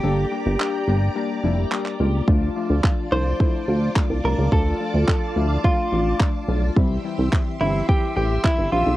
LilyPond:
<<
  \new Staff \with { instrumentName = "String machine" } { \time 4/4 \key d \minor \tempo 4 = 107 <g' d'' bes'' d'''>1 | <f' d'' a'' d'''>1~ | <f' d'' a'' d'''>1 | <g' e'' c''' e'''>1 | }
  \new Staff \with { instrumentName = "Clean electric guitar" } { \time 4/4 \key d \minor g'2.~ g'8 r8 | r4. c''4. r8 bes'8 | a'2 f'4 r4 | r4. e'8 g'8 g'8 e'8 f'8 | }
  \new Staff \with { instrumentName = "Synth stab" } { \time 4/4 \key d \minor <g bes d' a'>8 <g bes d' g'>8 <g bes d' g'>8 <g bes d' g'>8 <g bes d' g'>8 <g bes d' e'>8 <g bes d' g'>8 <g bes d' f'>8 | <f a d' f'>8 <f a d' f'>8 <f a d' f'>8 <f a d' f'>8 <f a d' e'>8 <f a d' f'>8 <f a d' f'>8 <f a d' f'>8 | <f a d' f'>8 <f a d' f'>8 <f a d' f'>8 <f a d' e'>8 <f a d' f'>8 <f a d' f'>8 <f a d' f'>8 <f a d' f'>8 | <e g c' e'>8 <e g c' e'>8 <e g c' e'>8 <e g c' e'>8 <e g c' e'>8 <e g c' e'>8 <e g c' e'>8 <e g c' e'>8 | }
  \new Staff \with { instrumentName = "Analog synth bass" } { \clef bass \time 4/4 \key d \minor g,,8 r16 g,,16 r8 g,,8 r8 f,,8 r8 cis,8 | d,8 r16 d,16 r8 c,8 r8 d,8 r16 c,16 c,16 cis,16 | d,8 r16 d,16 r8 d,8 r8 a,,8 r8 b,,8 | c,8 r16 c,16 r8 g,,8 r8 a,,8 r16 g,,16 bes,,16 b,,16 | }
  \new DrumStaff \with { instrumentName = "Drums" } \drummode { \time 4/4 r4 hc4 r4 hc16 hc8. | bd4 <hc bd>4 bd4 <hc bd>4 | bd4 <hc bd>4 bd4 <hc bd>4 | bd4 <hc bd>4 bd4 <hc bd>4 | }
>>